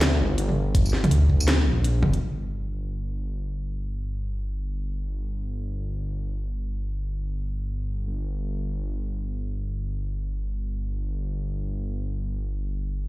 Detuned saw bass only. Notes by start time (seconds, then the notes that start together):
Already playing: D2
0.20 G1
0.38 G1
1.11 D2
1.66 A#1
2.03 F1
2.21 G1
8.06 G1